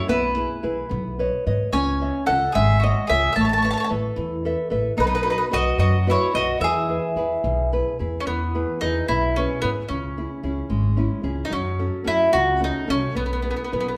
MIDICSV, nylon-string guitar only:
0, 0, Header, 1, 2, 480
1, 0, Start_track
1, 0, Key_signature, 4, "major"
1, 0, Tempo, 545455
1, 77, Time_signature, 6, 3, 24, 8
1, 12294, End_track
2, 0, Start_track
2, 0, Title_t, "Nylon-string guitar"
2, 0, Program_c, 0, 24
2, 74, Note_on_c, 0, 59, 75
2, 322, Note_on_c, 0, 64, 38
2, 323, Note_off_c, 0, 59, 0
2, 327, Note_on_c, 0, 68, 35
2, 328, Note_on_c, 0, 71, 34
2, 543, Note_off_c, 0, 64, 0
2, 547, Note_off_c, 0, 68, 0
2, 552, Note_off_c, 0, 71, 0
2, 554, Note_on_c, 0, 64, 46
2, 558, Note_on_c, 0, 68, 44
2, 563, Note_on_c, 0, 71, 52
2, 748, Note_off_c, 0, 64, 0
2, 750, Note_off_c, 0, 68, 0
2, 753, Note_off_c, 0, 71, 0
2, 787, Note_on_c, 0, 59, 58
2, 1050, Note_on_c, 0, 71, 50
2, 1052, Note_off_c, 0, 59, 0
2, 1055, Note_on_c, 0, 73, 46
2, 1057, Note_on_c, 0, 75, 49
2, 1278, Note_off_c, 0, 71, 0
2, 1282, Note_off_c, 0, 73, 0
2, 1283, Note_off_c, 0, 75, 0
2, 1288, Note_on_c, 0, 71, 39
2, 1294, Note_on_c, 0, 73, 40
2, 1294, Note_on_c, 0, 75, 52
2, 1480, Note_off_c, 0, 71, 0
2, 1482, Note_off_c, 0, 73, 0
2, 1483, Note_off_c, 0, 75, 0
2, 1525, Note_on_c, 0, 61, 65
2, 1772, Note_on_c, 0, 73, 34
2, 1775, Note_on_c, 0, 75, 26
2, 1779, Note_on_c, 0, 76, 44
2, 1992, Note_off_c, 0, 75, 0
2, 1993, Note_off_c, 0, 73, 0
2, 1997, Note_off_c, 0, 76, 0
2, 2002, Note_off_c, 0, 61, 0
2, 2002, Note_on_c, 0, 73, 45
2, 2006, Note_on_c, 0, 75, 40
2, 2008, Note_on_c, 0, 76, 54
2, 2236, Note_on_c, 0, 56, 60
2, 2395, Note_off_c, 0, 73, 0
2, 2395, Note_off_c, 0, 75, 0
2, 2398, Note_off_c, 0, 76, 0
2, 2494, Note_on_c, 0, 73, 53
2, 2495, Note_on_c, 0, 75, 42
2, 2497, Note_on_c, 0, 76, 56
2, 2709, Note_off_c, 0, 56, 0
2, 2712, Note_off_c, 0, 73, 0
2, 2712, Note_off_c, 0, 75, 0
2, 2715, Note_off_c, 0, 76, 0
2, 2721, Note_on_c, 0, 73, 43
2, 2723, Note_on_c, 0, 75, 41
2, 2729, Note_on_c, 0, 76, 49
2, 2910, Note_off_c, 0, 73, 0
2, 2910, Note_off_c, 0, 75, 0
2, 2912, Note_off_c, 0, 76, 0
2, 2954, Note_on_c, 0, 57, 64
2, 3197, Note_on_c, 0, 69, 38
2, 3201, Note_on_c, 0, 71, 27
2, 3208, Note_on_c, 0, 76, 46
2, 3416, Note_off_c, 0, 69, 0
2, 3420, Note_off_c, 0, 71, 0
2, 3424, Note_off_c, 0, 57, 0
2, 3424, Note_off_c, 0, 76, 0
2, 3427, Note_on_c, 0, 69, 54
2, 3431, Note_on_c, 0, 71, 47
2, 3434, Note_on_c, 0, 76, 47
2, 3662, Note_on_c, 0, 52, 70
2, 3818, Note_off_c, 0, 69, 0
2, 3821, Note_off_c, 0, 71, 0
2, 3823, Note_off_c, 0, 76, 0
2, 3917, Note_on_c, 0, 69, 55
2, 3920, Note_on_c, 0, 71, 44
2, 3927, Note_on_c, 0, 76, 61
2, 4127, Note_off_c, 0, 69, 0
2, 4134, Note_off_c, 0, 52, 0
2, 4134, Note_off_c, 0, 71, 0
2, 4137, Note_on_c, 0, 69, 48
2, 4138, Note_off_c, 0, 76, 0
2, 4144, Note_on_c, 0, 71, 45
2, 4149, Note_on_c, 0, 76, 54
2, 4328, Note_off_c, 0, 69, 0
2, 4332, Note_off_c, 0, 71, 0
2, 4335, Note_off_c, 0, 76, 0
2, 4372, Note_on_c, 0, 59, 69
2, 4614, Note_on_c, 0, 66, 29
2, 4620, Note_on_c, 0, 71, 34
2, 4623, Note_on_c, 0, 75, 38
2, 4839, Note_off_c, 0, 66, 0
2, 4843, Note_off_c, 0, 71, 0
2, 4844, Note_off_c, 0, 75, 0
2, 4846, Note_off_c, 0, 59, 0
2, 4850, Note_on_c, 0, 66, 48
2, 4853, Note_on_c, 0, 71, 42
2, 4855, Note_on_c, 0, 75, 48
2, 5090, Note_on_c, 0, 54, 60
2, 5245, Note_off_c, 0, 66, 0
2, 5248, Note_off_c, 0, 71, 0
2, 5248, Note_off_c, 0, 75, 0
2, 5343, Note_on_c, 0, 66, 56
2, 5346, Note_on_c, 0, 71, 45
2, 5351, Note_on_c, 0, 75, 55
2, 5563, Note_off_c, 0, 66, 0
2, 5567, Note_off_c, 0, 54, 0
2, 5569, Note_off_c, 0, 71, 0
2, 5574, Note_off_c, 0, 75, 0
2, 5574, Note_on_c, 0, 66, 47
2, 5580, Note_on_c, 0, 71, 38
2, 5584, Note_on_c, 0, 75, 46
2, 5765, Note_off_c, 0, 66, 0
2, 5768, Note_off_c, 0, 71, 0
2, 5771, Note_off_c, 0, 75, 0
2, 5809, Note_on_c, 0, 52, 69
2, 6062, Note_on_c, 0, 64, 34
2, 6068, Note_on_c, 0, 68, 25
2, 6073, Note_on_c, 0, 71, 35
2, 6290, Note_off_c, 0, 52, 0
2, 6296, Note_off_c, 0, 64, 0
2, 6300, Note_off_c, 0, 68, 0
2, 6303, Note_off_c, 0, 71, 0
2, 6307, Note_on_c, 0, 64, 43
2, 6308, Note_on_c, 0, 68, 42
2, 6316, Note_on_c, 0, 71, 55
2, 6551, Note_on_c, 0, 47, 55
2, 6706, Note_off_c, 0, 64, 0
2, 6708, Note_off_c, 0, 68, 0
2, 6710, Note_off_c, 0, 71, 0
2, 6798, Note_on_c, 0, 64, 39
2, 6803, Note_on_c, 0, 68, 49
2, 6804, Note_on_c, 0, 71, 51
2, 7023, Note_off_c, 0, 64, 0
2, 7029, Note_off_c, 0, 68, 0
2, 7031, Note_off_c, 0, 47, 0
2, 7033, Note_off_c, 0, 71, 0
2, 7033, Note_on_c, 0, 64, 43
2, 7040, Note_on_c, 0, 68, 33
2, 7044, Note_on_c, 0, 71, 47
2, 7226, Note_off_c, 0, 64, 0
2, 7230, Note_off_c, 0, 68, 0
2, 7233, Note_off_c, 0, 71, 0
2, 7267, Note_on_c, 0, 52, 49
2, 7521, Note_on_c, 0, 64, 34
2, 7525, Note_on_c, 0, 68, 31
2, 7526, Note_on_c, 0, 71, 36
2, 7744, Note_off_c, 0, 64, 0
2, 7748, Note_off_c, 0, 68, 0
2, 7749, Note_off_c, 0, 52, 0
2, 7754, Note_off_c, 0, 71, 0
2, 7754, Note_on_c, 0, 64, 44
2, 7759, Note_on_c, 0, 68, 39
2, 7764, Note_on_c, 0, 71, 43
2, 7995, Note_on_c, 0, 47, 58
2, 8150, Note_off_c, 0, 64, 0
2, 8153, Note_off_c, 0, 68, 0
2, 8156, Note_off_c, 0, 71, 0
2, 8248, Note_on_c, 0, 64, 52
2, 8251, Note_on_c, 0, 68, 41
2, 8255, Note_on_c, 0, 71, 43
2, 8459, Note_off_c, 0, 64, 0
2, 8461, Note_off_c, 0, 68, 0
2, 8466, Note_off_c, 0, 71, 0
2, 8469, Note_on_c, 0, 64, 44
2, 8470, Note_off_c, 0, 47, 0
2, 8474, Note_on_c, 0, 68, 31
2, 8477, Note_on_c, 0, 71, 43
2, 8661, Note_off_c, 0, 64, 0
2, 8663, Note_off_c, 0, 68, 0
2, 8666, Note_off_c, 0, 71, 0
2, 8709, Note_on_c, 0, 49, 58
2, 8952, Note_on_c, 0, 61, 27
2, 8956, Note_on_c, 0, 68, 35
2, 8959, Note_on_c, 0, 64, 28
2, 9172, Note_off_c, 0, 61, 0
2, 9172, Note_off_c, 0, 64, 0
2, 9177, Note_off_c, 0, 68, 0
2, 9179, Note_off_c, 0, 49, 0
2, 9181, Note_on_c, 0, 61, 43
2, 9184, Note_on_c, 0, 64, 42
2, 9187, Note_on_c, 0, 68, 48
2, 9413, Note_on_c, 0, 56, 59
2, 9572, Note_off_c, 0, 61, 0
2, 9572, Note_off_c, 0, 64, 0
2, 9575, Note_off_c, 0, 68, 0
2, 9651, Note_on_c, 0, 61, 50
2, 9658, Note_on_c, 0, 64, 44
2, 9662, Note_on_c, 0, 68, 57
2, 9875, Note_off_c, 0, 61, 0
2, 9882, Note_off_c, 0, 68, 0
2, 9883, Note_off_c, 0, 64, 0
2, 9885, Note_on_c, 0, 61, 45
2, 9886, Note_off_c, 0, 56, 0
2, 9892, Note_on_c, 0, 68, 52
2, 9896, Note_on_c, 0, 64, 40
2, 10079, Note_off_c, 0, 61, 0
2, 10084, Note_off_c, 0, 64, 0
2, 10084, Note_off_c, 0, 68, 0
2, 10119, Note_on_c, 0, 54, 65
2, 10376, Note_on_c, 0, 61, 33
2, 10379, Note_on_c, 0, 66, 35
2, 10381, Note_on_c, 0, 69, 46
2, 10590, Note_off_c, 0, 61, 0
2, 10590, Note_off_c, 0, 66, 0
2, 10592, Note_off_c, 0, 69, 0
2, 10598, Note_on_c, 0, 61, 47
2, 10600, Note_off_c, 0, 54, 0
2, 10602, Note_on_c, 0, 66, 47
2, 10609, Note_on_c, 0, 69, 46
2, 10841, Note_on_c, 0, 49, 62
2, 10999, Note_off_c, 0, 61, 0
2, 10999, Note_off_c, 0, 66, 0
2, 11000, Note_off_c, 0, 69, 0
2, 11089, Note_on_c, 0, 61, 47
2, 11094, Note_on_c, 0, 66, 47
2, 11101, Note_on_c, 0, 69, 47
2, 11319, Note_off_c, 0, 61, 0
2, 11319, Note_off_c, 0, 66, 0
2, 11322, Note_off_c, 0, 49, 0
2, 11325, Note_off_c, 0, 69, 0
2, 11329, Note_on_c, 0, 61, 43
2, 11332, Note_on_c, 0, 66, 42
2, 11336, Note_on_c, 0, 69, 47
2, 11523, Note_off_c, 0, 66, 0
2, 11524, Note_off_c, 0, 61, 0
2, 11527, Note_off_c, 0, 69, 0
2, 11571, Note_on_c, 0, 59, 61
2, 11829, Note_on_c, 0, 64, 28
2, 11832, Note_off_c, 0, 59, 0
2, 11835, Note_on_c, 0, 68, 30
2, 11836, Note_on_c, 0, 71, 36
2, 12064, Note_off_c, 0, 64, 0
2, 12066, Note_off_c, 0, 68, 0
2, 12070, Note_off_c, 0, 71, 0
2, 12074, Note_on_c, 0, 64, 40
2, 12078, Note_on_c, 0, 68, 33
2, 12081, Note_on_c, 0, 71, 42
2, 12266, Note_off_c, 0, 64, 0
2, 12267, Note_off_c, 0, 68, 0
2, 12270, Note_off_c, 0, 71, 0
2, 12294, End_track
0, 0, End_of_file